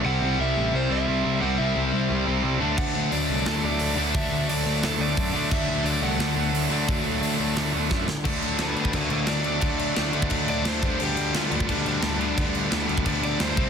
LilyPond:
<<
  \new Staff \with { instrumentName = "Overdriven electric guitar" } { \time 4/4 \key d \mixolydian \tempo 4 = 175 fis''4 e''4 c''8 e''4~ e''16. e''32 | fis''8 e''2. r8 | fis''4 d''4 a'8 d''4. | e''4 d''4 a'8 d''4. |
e''4 d''8 fis''2~ fis''8~ | fis''2. r4 | r4 <d' b'>8 <d' b'>8 <bes' d''>8 <bes' d''>8 d''4~ | d''2 r8 d''8 c''4 |
g'4 f'4 d'8 d'4.~ | d'8 r2 d''8 c''4 | }
  \new Staff \with { instrumentName = "Distorted electric guitar" } { \clef bass \time 4/4 \key d \mixolydian <c g c' e'>2~ <c g c' e'>8 <c g c' e'>8 <c g c' e'>4 | <c g c' e'>2~ <c g c' e'>8 <c g c' e'>8 <c g c' e'>8 <d fis a d'>8~ | <d fis a d'>2 <d fis a d'>8 <d fis a d'>4 <d fis a d'>8~ | <d fis a d'>2 <d fis a d'>8 <d fis a d'>4 <d fis a d'>8~ |
<d fis a d'>2 <d fis a d'>8 <d fis a d'>4 <d fis a d'>8~ | <d fis a d'>2 <d fis a d'>8 <d fis a d'>4 r8 | <d fis a d'>4 <d fis a d'>8 <d fis a d'>8 <d fis a d'>4 <d fis a d'>8 <d fis a d'>8 | <d fis a d'>4 <d fis a d'>8 <d fis a d'>8 <d fis a d'>4 <d fis a d'>8 <d g b d'>8 |
<d g b d'>4 <d g b d'>8 <d g b d'>8 <d g b d'>4 <d g b d'>8 <d g b d'>8 | <d g b d'>4 <d g b d'>8 <d g b d'>8 <d g b d'>4 <d g b d'>8 <c g c' e'>8 | }
  \new Staff \with { instrumentName = "Distorted electric guitar" } { \clef bass \time 4/4 \key d \mixolydian <c g c'>1 | <c g c'>2.~ <c g c'>8 <d a d'>8~ | <d a d'>2.~ <d a d'>8 <d a d'>8~ | <d a d'>2.~ <d a d'>8 <d a d'>8~ |
<d a d'>2.~ <d a d'>8 <d a d'>8~ | <d a d'>2.~ <d a d'>8 r8 | <d a d'>4 <d a d'>8 <d a d'>8 <d a d'>4 <d a d'>8 <d a d'>8 | <d a d'>4 <d a d'>8 <d a d'>8 <d a d'>4 <d a d'>8 <g, d g>8 |
<g, d g>4 <g, d g>8 <g, d g>8 <g, d g>4 <g, d g>8 <g, d g>8 | <g, d g>4 <g, d g>8 <g, d g>8 <g, d g>4 <g, d g>8 <c g c'>8 | }
  \new Staff \with { instrumentName = "Picked electric bass" } { \clef bass \time 4/4 \key d \mixolydian c,8 c,8 c,8 a,,8 c,8 c,8 c,8 c,8 | c,8 c,8 c,8 c,8 c,8 c,8 c,8 d,8 | d,8 d,8 d,8 c,8 d,8 d,8 d,8 d,8 | d,8 d,8 d,8 d,8 d,8 d,8 fis,8 d8 |
d,8 d,8 d,8 c,8 d,8 d,8 d,8 d,8 | d,8 d,8 d,8 d,8 d,8 d,8 fis,8 d8 | d,8 d,8 d,8 d,8 d,8 d,8 d,4 | d,4 d,8 d,8 d,8 d,8 d,8 d,8 |
d,8 d,8 d,8 d,8 d,8 d,8 d,4 | d,4 d,8 d,8 d,8 d,8 d,8 c,8 | }
  \new DrumStaff \with { instrumentName = "Drums" } \drummode { \time 4/4 r4 r4 r4 r4 | r4 r4 r4 r4 | <cymc bd>4 hho4 <hho sn>4 hho4 | bd4 hho4 <hho sn>4 <hho bd>4 |
<cymc bd>4 hho4 <hho sn>4 hho4 | <hho bd>4 hho4 <hho sn>4 <bd sn>8 sn8 | <cymc bd>8 cymc8 <cymc sn>8 cymc16 bd16 <cymc bd>8 cymc8 <cymc sn>8 cymc8 | <cymc bd>8 cymc8 <cymc sn>8 cymc16 bd16 <cymc bd>8 cymc8 <cymc sn>8 <cymc bd>8 |
cymc8 cymc8 <cymc sn>8 cymc16 bd16 <cymc bd>8 cymc8 <cymc sn>8 cymc8 | <cymc bd>8 cymc8 <cymc sn>8 cymc16 bd16 <cymc bd>8 cymc8 <cymc sn>8 <cymc bd>8 | }
>>